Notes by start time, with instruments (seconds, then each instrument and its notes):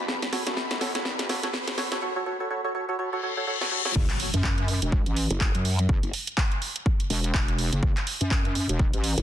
Already playing: ambient pad F#4 A4 C#5 B5, riser
0.08 wobble bass F#1, snare
0.22 snare, closed hi-hat
0.33 synth stab F#4 A4 C#5, snare, open hi-hat
0.47 wobble bass F#2, synth stab F#4 A4 C#5, snare, closed hi-hat
0.57 snare
0.71 wobble bass G1, snare, closed hi-hat
0.81 synth stab F#4 A4 C#5, snare, open hi-hat
0.95 wobble bass F#1, synth stab F#4 A4 C#5, snare, closed hi-hat
1.05 snare
1.19 wobble bass F#1, snare, closed hi-hat
1.29 synth stab F#4 A4 C#5, snare, open hi-hat
1.43 synth stab F#4 A4 C#5, snare, closed hi-hat
1.54 snare
1.68 snare, closed hi-hat
1.78 synth stab F#4 A4 C#5, snare, open hi-hat
1.92 synth stab F#4 A4 C#5, snare, closed hi-hat
2.02 synth stab F#4 A4 C#5
2.16 synth stab F#4 A4 C#5
2.26 synth stab F#4 A4 C#5
2.40 synth stab F#4 A4 C#5
2.50 synth stab F#4 A4 C#5
2.64 synth stab F#4 A4 C#5
2.75 synth stab F#4 A4 C#5
2.89 synth stab F#4 A4 C#5
2.99 synth stab F#4 A4 C#5, reverse cymbal
3.13 synth stab F#4 A4 C#5
3.23 synth stab F#4 A4 C#5
3.37 synth stab F#4 A4 C#5
3.47 synth stab F#4 A4 C#5
3.61 synth stab F#4 A4 C#5, snare
3.71 synth stab F#4 A4 C#5
3.85 synth stab F#4 A4 C#5, snare
3.96 wobble bass F#1, kick, crash, impact
4.10 clap, closed hi-hat
4.20 open hi-hat
4.34 wobble bass F#2, closed hi-hat
4.44 kick, clap
4.58 closed hi-hat
4.68 open hi-hat
4.82 wobble bass E1, closed hi-hat
4.92 kick
5.06 wobble bass A1, closed hi-hat
5.17 open hi-hat
5.31 wobble bass F#1, closed hi-hat
5.41 kick, clap
5.55 wobble bass F#2, closed hi-hat
5.65 open hi-hat
5.79 closed hi-hat
5.89 wobble bass F#1, kick
6.03 wobble bass F#1, closed hi-hat
6.13 open hi-hat
6.27 closed hi-hat
6.38 kick, clap
6.52 closed hi-hat
6.62 open hi-hat
6.76 closed hi-hat
6.86 kick
7.00 closed hi-hat
7.10 wobble bass E1, open hi-hat
7.24 closed hi-hat
7.34 wobble bass E1, kick, clap
7.48 closed hi-hat
7.59 open hi-hat
7.72 wobble bass F#1, closed hi-hat
7.83 wobble bass F#1, kick
7.97 clap, closed hi-hat
8.07 open hi-hat
8.21 wobble bass F#2, closed hi-hat
8.31 kick, clap
8.45 closed hi-hat
8.55 open hi-hat
8.69 wobble bass E1, closed hi-hat
8.79 kick
8.93 wobble bass A1, closed hi-hat
9.04 open hi-hat
9.18 wobble bass F#1, closed hi-hat